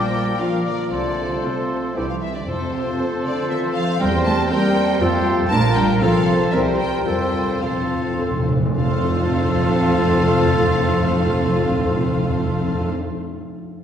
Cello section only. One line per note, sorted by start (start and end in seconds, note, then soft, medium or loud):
0.00 0.39 G3 medium
0.39 0.65 F3 medium
0.65 0.90 D3 medium
0.91 1.42 D3 medium
1.43 1.96 C3 medium
1.95 2.08 D3 medium
2.08 2.14 F3 medium
2.22 2.34 E3 soft
2.34 2.47 D3 medium
2.47 3.23 C3 medium
3.25 3.49 D3 medium
3.49 3.75 E3 medium
3.75 4.00 F3 medium
3.99 4.07 G3 medium
4.25 4.33 A3 medium
4.50 5.24 G3 medium
5.51 5.59 A3 medium
5.76 6.01 G3 medium
6.01 6.53 F3 medium
6.52 6.79 E3 medium
6.78 7.04 G3 medium
7.05 7.60 G3 medium
7.61 8.48 F3 medium
8.78 12.89 F3 medium